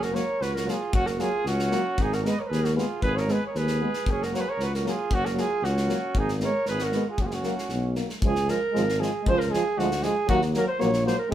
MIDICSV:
0, 0, Header, 1, 7, 480
1, 0, Start_track
1, 0, Key_signature, 6, "major"
1, 0, Tempo, 523560
1, 848, Time_signature, 2, 2, 24, 8
1, 6125, Tempo, 516796
1, 7570, Key_signature, -5, "major"
1, 10453, End_track
2, 0, Start_track
2, 0, Title_t, "Flugelhorn"
2, 0, Program_c, 0, 56
2, 25, Note_on_c, 0, 70, 86
2, 132, Note_on_c, 0, 73, 104
2, 146, Note_off_c, 0, 70, 0
2, 383, Note_on_c, 0, 71, 91
2, 396, Note_off_c, 0, 73, 0
2, 500, Note_on_c, 0, 70, 81
2, 514, Note_off_c, 0, 71, 0
2, 643, Note_on_c, 0, 68, 86
2, 657, Note_off_c, 0, 70, 0
2, 861, Note_on_c, 0, 66, 109
2, 875, Note_off_c, 0, 68, 0
2, 976, Note_on_c, 0, 70, 78
2, 990, Note_off_c, 0, 66, 0
2, 1100, Note_on_c, 0, 68, 97
2, 1114, Note_off_c, 0, 70, 0
2, 1335, Note_off_c, 0, 68, 0
2, 1351, Note_on_c, 0, 66, 95
2, 1855, Note_on_c, 0, 68, 111
2, 1869, Note_off_c, 0, 66, 0
2, 1955, Note_on_c, 0, 70, 83
2, 1969, Note_off_c, 0, 68, 0
2, 2087, Note_on_c, 0, 75, 94
2, 2091, Note_off_c, 0, 70, 0
2, 2194, Note_on_c, 0, 73, 71
2, 2207, Note_off_c, 0, 75, 0
2, 2230, Note_off_c, 0, 73, 0
2, 2230, Note_on_c, 0, 73, 72
2, 2262, Note_on_c, 0, 71, 93
2, 2276, Note_off_c, 0, 73, 0
2, 2402, Note_on_c, 0, 70, 91
2, 2415, Note_off_c, 0, 71, 0
2, 2521, Note_off_c, 0, 70, 0
2, 2526, Note_on_c, 0, 68, 73
2, 2752, Note_off_c, 0, 68, 0
2, 2769, Note_on_c, 0, 71, 108
2, 2894, Note_on_c, 0, 73, 80
2, 2908, Note_off_c, 0, 71, 0
2, 3039, Note_on_c, 0, 71, 92
2, 3053, Note_off_c, 0, 73, 0
2, 3168, Note_off_c, 0, 71, 0
2, 3174, Note_on_c, 0, 73, 78
2, 3270, Note_on_c, 0, 71, 101
2, 3284, Note_off_c, 0, 73, 0
2, 3759, Note_on_c, 0, 68, 100
2, 3773, Note_off_c, 0, 71, 0
2, 3876, Note_on_c, 0, 70, 81
2, 3890, Note_off_c, 0, 68, 0
2, 3989, Note_on_c, 0, 73, 94
2, 4002, Note_off_c, 0, 70, 0
2, 4036, Note_on_c, 0, 71, 86
2, 4050, Note_off_c, 0, 73, 0
2, 4115, Note_on_c, 0, 73, 83
2, 4129, Note_off_c, 0, 71, 0
2, 4243, Note_on_c, 0, 71, 80
2, 4256, Note_off_c, 0, 73, 0
2, 4341, Note_off_c, 0, 71, 0
2, 4346, Note_on_c, 0, 70, 79
2, 4448, Note_off_c, 0, 70, 0
2, 4476, Note_on_c, 0, 68, 90
2, 4711, Note_on_c, 0, 66, 108
2, 4725, Note_off_c, 0, 68, 0
2, 4814, Note_on_c, 0, 70, 80
2, 4827, Note_off_c, 0, 66, 0
2, 4946, Note_on_c, 0, 68, 98
2, 4960, Note_off_c, 0, 70, 0
2, 5171, Note_on_c, 0, 66, 82
2, 5184, Note_off_c, 0, 68, 0
2, 5664, Note_on_c, 0, 68, 96
2, 5678, Note_off_c, 0, 66, 0
2, 5780, Note_off_c, 0, 68, 0
2, 5910, Note_on_c, 0, 73, 100
2, 6120, Note_off_c, 0, 73, 0
2, 6127, Note_on_c, 0, 71, 93
2, 6277, Note_on_c, 0, 70, 80
2, 6291, Note_off_c, 0, 71, 0
2, 6505, Note_off_c, 0, 70, 0
2, 6515, Note_on_c, 0, 68, 75
2, 6619, Note_on_c, 0, 66, 73
2, 6633, Note_off_c, 0, 68, 0
2, 6669, Note_on_c, 0, 68, 66
2, 6683, Note_off_c, 0, 66, 0
2, 6737, Note_on_c, 0, 66, 68
2, 6751, Note_off_c, 0, 68, 0
2, 7329, Note_off_c, 0, 66, 0
2, 7566, Note_on_c, 0, 68, 99
2, 7808, Note_on_c, 0, 70, 104
2, 7822, Note_off_c, 0, 68, 0
2, 8281, Note_on_c, 0, 68, 81
2, 8295, Note_off_c, 0, 70, 0
2, 8540, Note_on_c, 0, 72, 116
2, 8554, Note_off_c, 0, 68, 0
2, 8637, Note_on_c, 0, 70, 90
2, 8651, Note_off_c, 0, 72, 0
2, 8752, Note_on_c, 0, 68, 104
2, 8766, Note_off_c, 0, 70, 0
2, 9005, Note_on_c, 0, 66, 87
2, 9019, Note_off_c, 0, 68, 0
2, 9236, Note_on_c, 0, 68, 99
2, 9250, Note_off_c, 0, 66, 0
2, 9471, Note_off_c, 0, 68, 0
2, 9476, Note_on_c, 0, 66, 115
2, 9587, Note_off_c, 0, 66, 0
2, 9742, Note_on_c, 0, 70, 105
2, 9827, Note_off_c, 0, 70, 0
2, 9832, Note_on_c, 0, 72, 100
2, 9947, Note_on_c, 0, 73, 104
2, 9961, Note_off_c, 0, 72, 0
2, 10190, Note_off_c, 0, 73, 0
2, 10196, Note_on_c, 0, 72, 104
2, 10297, Note_off_c, 0, 72, 0
2, 10303, Note_on_c, 0, 70, 91
2, 10421, Note_off_c, 0, 70, 0
2, 10453, End_track
3, 0, Start_track
3, 0, Title_t, "Trumpet"
3, 0, Program_c, 1, 56
3, 28, Note_on_c, 1, 66, 76
3, 130, Note_on_c, 1, 70, 68
3, 143, Note_off_c, 1, 66, 0
3, 376, Note_on_c, 1, 66, 81
3, 390, Note_off_c, 1, 70, 0
3, 510, Note_off_c, 1, 66, 0
3, 510, Note_on_c, 1, 66, 75
3, 612, Note_on_c, 1, 65, 80
3, 626, Note_off_c, 1, 66, 0
3, 866, Note_on_c, 1, 61, 76
3, 879, Note_off_c, 1, 65, 0
3, 987, Note_on_c, 1, 66, 76
3, 1001, Note_off_c, 1, 61, 0
3, 1099, Note_on_c, 1, 65, 79
3, 1113, Note_off_c, 1, 66, 0
3, 1334, Note_off_c, 1, 65, 0
3, 1348, Note_on_c, 1, 61, 83
3, 1824, Note_on_c, 1, 63, 89
3, 1838, Note_off_c, 1, 61, 0
3, 1961, Note_on_c, 1, 66, 73
3, 1975, Note_off_c, 1, 63, 0
3, 2052, Note_on_c, 1, 70, 75
3, 2066, Note_off_c, 1, 66, 0
3, 2107, Note_on_c, 1, 71, 66
3, 2121, Note_off_c, 1, 70, 0
3, 2196, Note_on_c, 1, 70, 68
3, 2210, Note_off_c, 1, 71, 0
3, 2245, Note_off_c, 1, 70, 0
3, 2245, Note_on_c, 1, 70, 58
3, 2296, Note_on_c, 1, 68, 97
3, 2309, Note_off_c, 1, 70, 0
3, 2428, Note_on_c, 1, 66, 56
3, 2442, Note_off_c, 1, 68, 0
3, 2533, Note_off_c, 1, 66, 0
3, 2538, Note_on_c, 1, 65, 78
3, 2758, Note_off_c, 1, 65, 0
3, 2797, Note_on_c, 1, 68, 94
3, 2922, Note_on_c, 1, 70, 81
3, 2936, Note_off_c, 1, 68, 0
3, 3033, Note_on_c, 1, 68, 77
3, 3046, Note_off_c, 1, 70, 0
3, 3195, Note_off_c, 1, 68, 0
3, 3201, Note_on_c, 1, 70, 51
3, 3282, Note_on_c, 1, 68, 84
3, 3295, Note_off_c, 1, 70, 0
3, 3766, Note_on_c, 1, 61, 78
3, 3780, Note_off_c, 1, 68, 0
3, 3891, Note_on_c, 1, 66, 66
3, 3904, Note_off_c, 1, 61, 0
3, 4022, Note_on_c, 1, 70, 57
3, 4036, Note_off_c, 1, 66, 0
3, 4041, Note_on_c, 1, 68, 57
3, 4055, Note_off_c, 1, 70, 0
3, 4127, Note_on_c, 1, 70, 80
3, 4140, Note_off_c, 1, 68, 0
3, 4234, Note_on_c, 1, 66, 80
3, 4248, Note_off_c, 1, 70, 0
3, 4348, Note_off_c, 1, 66, 0
3, 4363, Note_on_c, 1, 66, 67
3, 4457, Note_off_c, 1, 66, 0
3, 4477, Note_on_c, 1, 65, 71
3, 4711, Note_on_c, 1, 61, 72
3, 4725, Note_off_c, 1, 65, 0
3, 4838, Note_on_c, 1, 66, 64
3, 4852, Note_off_c, 1, 61, 0
3, 4951, Note_on_c, 1, 65, 67
3, 4965, Note_off_c, 1, 66, 0
3, 5184, Note_on_c, 1, 61, 76
3, 5197, Note_off_c, 1, 65, 0
3, 5675, Note_on_c, 1, 63, 82
3, 5688, Note_off_c, 1, 61, 0
3, 5785, Note_off_c, 1, 63, 0
3, 5897, Note_on_c, 1, 70, 73
3, 6114, Note_off_c, 1, 70, 0
3, 6147, Note_on_c, 1, 68, 83
3, 6250, Note_on_c, 1, 66, 70
3, 6264, Note_off_c, 1, 68, 0
3, 6483, Note_off_c, 1, 66, 0
3, 6488, Note_on_c, 1, 65, 49
3, 6598, Note_on_c, 1, 61, 63
3, 6612, Note_off_c, 1, 65, 0
3, 6642, Note_on_c, 1, 65, 57
3, 6656, Note_off_c, 1, 61, 0
3, 6725, Note_on_c, 1, 61, 64
3, 6739, Note_off_c, 1, 65, 0
3, 7323, Note_off_c, 1, 61, 0
3, 10453, End_track
4, 0, Start_track
4, 0, Title_t, "French horn"
4, 0, Program_c, 2, 60
4, 108, Note_on_c, 2, 58, 62
4, 208, Note_off_c, 2, 58, 0
4, 608, Note_on_c, 2, 58, 52
4, 704, Note_off_c, 2, 58, 0
4, 1084, Note_on_c, 2, 58, 58
4, 1181, Note_off_c, 2, 58, 0
4, 1559, Note_on_c, 2, 58, 69
4, 1658, Note_off_c, 2, 58, 0
4, 2047, Note_on_c, 2, 59, 62
4, 2144, Note_off_c, 2, 59, 0
4, 2514, Note_on_c, 2, 59, 68
4, 2614, Note_off_c, 2, 59, 0
4, 2996, Note_on_c, 2, 59, 55
4, 3095, Note_off_c, 2, 59, 0
4, 3477, Note_on_c, 2, 59, 53
4, 3576, Note_off_c, 2, 59, 0
4, 3957, Note_on_c, 2, 58, 59
4, 4056, Note_off_c, 2, 58, 0
4, 4427, Note_on_c, 2, 58, 59
4, 4528, Note_off_c, 2, 58, 0
4, 4902, Note_on_c, 2, 58, 61
4, 5003, Note_off_c, 2, 58, 0
4, 5382, Note_on_c, 2, 58, 61
4, 5483, Note_off_c, 2, 58, 0
4, 5857, Note_on_c, 2, 59, 53
4, 5958, Note_off_c, 2, 59, 0
4, 6349, Note_on_c, 2, 59, 61
4, 6449, Note_off_c, 2, 59, 0
4, 6821, Note_on_c, 2, 58, 60
4, 6923, Note_off_c, 2, 58, 0
4, 7314, Note_on_c, 2, 58, 49
4, 7413, Note_off_c, 2, 58, 0
4, 7552, Note_on_c, 2, 56, 61
4, 7652, Note_off_c, 2, 56, 0
4, 7793, Note_on_c, 2, 56, 57
4, 7892, Note_off_c, 2, 56, 0
4, 8026, Note_on_c, 2, 56, 78
4, 8127, Note_off_c, 2, 56, 0
4, 8279, Note_on_c, 2, 56, 63
4, 8377, Note_off_c, 2, 56, 0
4, 8496, Note_on_c, 2, 56, 76
4, 8599, Note_off_c, 2, 56, 0
4, 8743, Note_on_c, 2, 56, 64
4, 8844, Note_off_c, 2, 56, 0
4, 8996, Note_on_c, 2, 56, 71
4, 9095, Note_off_c, 2, 56, 0
4, 9241, Note_on_c, 2, 56, 63
4, 9339, Note_off_c, 2, 56, 0
4, 9482, Note_on_c, 2, 58, 82
4, 9579, Note_off_c, 2, 58, 0
4, 9709, Note_on_c, 2, 58, 67
4, 9808, Note_off_c, 2, 58, 0
4, 9949, Note_on_c, 2, 58, 85
4, 10048, Note_off_c, 2, 58, 0
4, 10175, Note_on_c, 2, 58, 70
4, 10276, Note_off_c, 2, 58, 0
4, 10410, Note_on_c, 2, 60, 73
4, 10453, Note_off_c, 2, 60, 0
4, 10453, End_track
5, 0, Start_track
5, 0, Title_t, "Euphonium"
5, 0, Program_c, 3, 58
5, 126, Note_on_c, 3, 54, 55
5, 223, Note_off_c, 3, 54, 0
5, 591, Note_on_c, 3, 54, 52
5, 691, Note_off_c, 3, 54, 0
5, 1088, Note_on_c, 3, 54, 69
5, 1185, Note_off_c, 3, 54, 0
5, 1584, Note_on_c, 3, 54, 67
5, 1678, Note_off_c, 3, 54, 0
5, 2059, Note_on_c, 3, 56, 62
5, 2154, Note_off_c, 3, 56, 0
5, 2520, Note_on_c, 3, 56, 46
5, 2618, Note_off_c, 3, 56, 0
5, 3007, Note_on_c, 3, 56, 65
5, 3104, Note_off_c, 3, 56, 0
5, 3492, Note_on_c, 3, 56, 49
5, 3588, Note_off_c, 3, 56, 0
5, 3974, Note_on_c, 3, 54, 64
5, 4069, Note_off_c, 3, 54, 0
5, 4441, Note_on_c, 3, 54, 54
5, 4539, Note_off_c, 3, 54, 0
5, 4895, Note_on_c, 3, 54, 66
5, 4997, Note_off_c, 3, 54, 0
5, 5395, Note_on_c, 3, 54, 54
5, 5493, Note_off_c, 3, 54, 0
5, 5886, Note_on_c, 3, 56, 66
5, 5981, Note_off_c, 3, 56, 0
5, 6362, Note_on_c, 3, 56, 56
5, 6459, Note_off_c, 3, 56, 0
5, 6833, Note_on_c, 3, 54, 58
5, 6932, Note_off_c, 3, 54, 0
5, 7329, Note_on_c, 3, 54, 38
5, 7425, Note_off_c, 3, 54, 0
5, 7570, Note_on_c, 3, 53, 68
5, 7666, Note_off_c, 3, 53, 0
5, 7805, Note_on_c, 3, 53, 66
5, 7902, Note_off_c, 3, 53, 0
5, 8043, Note_on_c, 3, 53, 82
5, 8141, Note_off_c, 3, 53, 0
5, 8281, Note_on_c, 3, 53, 60
5, 8379, Note_off_c, 3, 53, 0
5, 8542, Note_on_c, 3, 53, 85
5, 8635, Note_off_c, 3, 53, 0
5, 8780, Note_on_c, 3, 53, 74
5, 8874, Note_off_c, 3, 53, 0
5, 9011, Note_on_c, 3, 53, 71
5, 9106, Note_off_c, 3, 53, 0
5, 9238, Note_on_c, 3, 53, 53
5, 9336, Note_off_c, 3, 53, 0
5, 9464, Note_on_c, 3, 54, 73
5, 9564, Note_off_c, 3, 54, 0
5, 9717, Note_on_c, 3, 54, 72
5, 9815, Note_off_c, 3, 54, 0
5, 9949, Note_on_c, 3, 54, 78
5, 10048, Note_off_c, 3, 54, 0
5, 10184, Note_on_c, 3, 54, 65
5, 10283, Note_off_c, 3, 54, 0
5, 10418, Note_on_c, 3, 56, 89
5, 10453, Note_off_c, 3, 56, 0
5, 10453, End_track
6, 0, Start_track
6, 0, Title_t, "Tuba"
6, 0, Program_c, 4, 58
6, 0, Note_on_c, 4, 30, 78
6, 160, Note_off_c, 4, 30, 0
6, 373, Note_on_c, 4, 37, 84
6, 636, Note_off_c, 4, 37, 0
6, 850, Note_on_c, 4, 30, 77
6, 1114, Note_off_c, 4, 30, 0
6, 1328, Note_on_c, 4, 37, 99
6, 1593, Note_off_c, 4, 37, 0
6, 1805, Note_on_c, 4, 32, 79
6, 2071, Note_off_c, 4, 32, 0
6, 2294, Note_on_c, 4, 39, 93
6, 2558, Note_off_c, 4, 39, 0
6, 2774, Note_on_c, 4, 32, 93
6, 3038, Note_off_c, 4, 32, 0
6, 3247, Note_on_c, 4, 39, 86
6, 3512, Note_off_c, 4, 39, 0
6, 3725, Note_on_c, 4, 30, 76
6, 3990, Note_off_c, 4, 30, 0
6, 4200, Note_on_c, 4, 37, 83
6, 4467, Note_off_c, 4, 37, 0
6, 4679, Note_on_c, 4, 30, 87
6, 4945, Note_off_c, 4, 30, 0
6, 5154, Note_on_c, 4, 37, 93
6, 5421, Note_off_c, 4, 37, 0
6, 5643, Note_on_c, 4, 32, 88
6, 5907, Note_off_c, 4, 32, 0
6, 6121, Note_on_c, 4, 32, 77
6, 6388, Note_off_c, 4, 32, 0
6, 6606, Note_on_c, 4, 30, 64
6, 6871, Note_off_c, 4, 30, 0
6, 7079, Note_on_c, 4, 35, 91
6, 7346, Note_off_c, 4, 35, 0
6, 7562, Note_on_c, 4, 37, 89
6, 7829, Note_off_c, 4, 37, 0
6, 8052, Note_on_c, 4, 32, 96
6, 8315, Note_off_c, 4, 32, 0
6, 8528, Note_on_c, 4, 37, 100
6, 8792, Note_off_c, 4, 37, 0
6, 9004, Note_on_c, 4, 38, 90
6, 9269, Note_off_c, 4, 38, 0
6, 9483, Note_on_c, 4, 39, 89
6, 9747, Note_off_c, 4, 39, 0
6, 9964, Note_on_c, 4, 34, 104
6, 10227, Note_off_c, 4, 34, 0
6, 10453, End_track
7, 0, Start_track
7, 0, Title_t, "Drums"
7, 17, Note_on_c, 9, 38, 20
7, 109, Note_off_c, 9, 38, 0
7, 139, Note_on_c, 9, 38, 25
7, 231, Note_off_c, 9, 38, 0
7, 382, Note_on_c, 9, 38, 23
7, 474, Note_off_c, 9, 38, 0
7, 517, Note_on_c, 9, 38, 26
7, 609, Note_off_c, 9, 38, 0
7, 627, Note_on_c, 9, 38, 31
7, 718, Note_off_c, 9, 38, 0
7, 855, Note_on_c, 9, 36, 100
7, 947, Note_off_c, 9, 36, 0
7, 976, Note_on_c, 9, 38, 22
7, 1068, Note_off_c, 9, 38, 0
7, 1093, Note_on_c, 9, 38, 30
7, 1185, Note_off_c, 9, 38, 0
7, 1340, Note_on_c, 9, 38, 28
7, 1431, Note_off_c, 9, 38, 0
7, 1459, Note_on_c, 9, 38, 34
7, 1551, Note_off_c, 9, 38, 0
7, 1573, Note_on_c, 9, 38, 31
7, 1665, Note_off_c, 9, 38, 0
7, 1815, Note_on_c, 9, 36, 77
7, 1907, Note_off_c, 9, 36, 0
7, 1948, Note_on_c, 9, 38, 22
7, 2040, Note_off_c, 9, 38, 0
7, 2067, Note_on_c, 9, 38, 30
7, 2159, Note_off_c, 9, 38, 0
7, 2313, Note_on_c, 9, 38, 22
7, 2405, Note_off_c, 9, 38, 0
7, 2425, Note_on_c, 9, 38, 29
7, 2516, Note_off_c, 9, 38, 0
7, 2552, Note_on_c, 9, 38, 26
7, 2644, Note_off_c, 9, 38, 0
7, 2773, Note_on_c, 9, 36, 66
7, 2864, Note_off_c, 9, 36, 0
7, 2911, Note_on_c, 9, 38, 20
7, 3002, Note_off_c, 9, 38, 0
7, 3011, Note_on_c, 9, 38, 22
7, 3103, Note_off_c, 9, 38, 0
7, 3255, Note_on_c, 9, 38, 18
7, 3347, Note_off_c, 9, 38, 0
7, 3366, Note_on_c, 9, 38, 26
7, 3458, Note_off_c, 9, 38, 0
7, 3609, Note_on_c, 9, 38, 22
7, 3701, Note_off_c, 9, 38, 0
7, 3726, Note_on_c, 9, 36, 74
7, 3818, Note_off_c, 9, 36, 0
7, 3875, Note_on_c, 9, 38, 21
7, 3967, Note_off_c, 9, 38, 0
7, 3984, Note_on_c, 9, 38, 23
7, 4075, Note_off_c, 9, 38, 0
7, 4216, Note_on_c, 9, 38, 24
7, 4308, Note_off_c, 9, 38, 0
7, 4349, Note_on_c, 9, 38, 25
7, 4440, Note_off_c, 9, 38, 0
7, 4460, Note_on_c, 9, 38, 26
7, 4552, Note_off_c, 9, 38, 0
7, 4683, Note_on_c, 9, 36, 78
7, 4774, Note_off_c, 9, 36, 0
7, 4817, Note_on_c, 9, 38, 23
7, 4909, Note_off_c, 9, 38, 0
7, 4929, Note_on_c, 9, 38, 26
7, 5021, Note_off_c, 9, 38, 0
7, 5173, Note_on_c, 9, 38, 22
7, 5265, Note_off_c, 9, 38, 0
7, 5291, Note_on_c, 9, 38, 29
7, 5382, Note_off_c, 9, 38, 0
7, 5402, Note_on_c, 9, 38, 28
7, 5494, Note_off_c, 9, 38, 0
7, 5636, Note_on_c, 9, 36, 81
7, 5727, Note_off_c, 9, 36, 0
7, 5762, Note_on_c, 9, 38, 26
7, 5854, Note_off_c, 9, 38, 0
7, 5869, Note_on_c, 9, 38, 28
7, 5961, Note_off_c, 9, 38, 0
7, 6104, Note_on_c, 9, 38, 26
7, 6196, Note_off_c, 9, 38, 0
7, 6226, Note_on_c, 9, 38, 26
7, 6319, Note_off_c, 9, 38, 0
7, 6349, Note_on_c, 9, 38, 24
7, 6442, Note_off_c, 9, 38, 0
7, 6589, Note_on_c, 9, 36, 65
7, 6682, Note_off_c, 9, 36, 0
7, 6709, Note_on_c, 9, 38, 22
7, 6801, Note_off_c, 9, 38, 0
7, 6826, Note_on_c, 9, 38, 24
7, 6919, Note_off_c, 9, 38, 0
7, 6962, Note_on_c, 9, 38, 22
7, 7055, Note_off_c, 9, 38, 0
7, 7063, Note_on_c, 9, 38, 20
7, 7156, Note_off_c, 9, 38, 0
7, 7307, Note_on_c, 9, 38, 22
7, 7400, Note_off_c, 9, 38, 0
7, 7437, Note_on_c, 9, 38, 22
7, 7530, Note_off_c, 9, 38, 0
7, 7555, Note_on_c, 9, 36, 84
7, 7648, Note_off_c, 9, 36, 0
7, 7679, Note_on_c, 9, 38, 25
7, 7772, Note_off_c, 9, 38, 0
7, 7800, Note_on_c, 9, 38, 29
7, 7893, Note_off_c, 9, 38, 0
7, 8053, Note_on_c, 9, 38, 24
7, 8146, Note_off_c, 9, 38, 0
7, 8176, Note_on_c, 9, 38, 30
7, 8269, Note_off_c, 9, 38, 0
7, 8300, Note_on_c, 9, 38, 26
7, 8393, Note_off_c, 9, 38, 0
7, 8524, Note_on_c, 9, 36, 78
7, 8617, Note_off_c, 9, 36, 0
7, 8655, Note_on_c, 9, 38, 24
7, 8748, Note_off_c, 9, 38, 0
7, 8778, Note_on_c, 9, 38, 28
7, 8871, Note_off_c, 9, 38, 0
7, 9015, Note_on_c, 9, 38, 21
7, 9108, Note_off_c, 9, 38, 0
7, 9127, Note_on_c, 9, 38, 34
7, 9220, Note_off_c, 9, 38, 0
7, 9233, Note_on_c, 9, 38, 29
7, 9326, Note_off_c, 9, 38, 0
7, 9475, Note_on_c, 9, 36, 83
7, 9568, Note_off_c, 9, 36, 0
7, 9595, Note_on_c, 9, 38, 21
7, 9688, Note_off_c, 9, 38, 0
7, 9710, Note_on_c, 9, 38, 28
7, 9803, Note_off_c, 9, 38, 0
7, 9954, Note_on_c, 9, 38, 20
7, 10047, Note_off_c, 9, 38, 0
7, 10072, Note_on_c, 9, 38, 27
7, 10164, Note_off_c, 9, 38, 0
7, 10204, Note_on_c, 9, 38, 28
7, 10297, Note_off_c, 9, 38, 0
7, 10453, End_track
0, 0, End_of_file